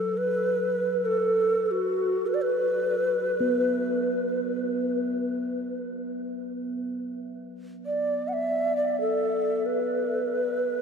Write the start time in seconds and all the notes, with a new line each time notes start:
Already playing: F#3 A4
0.17 B4
1.05 A4
1.66 A4
1.72 F#4
2.27 B4
2.34 D5
2.42 B4
3.40 B3
7.86 D5
8.28 F#5
8.33 E5
8.77 D5
9.01 A4
9.66 B4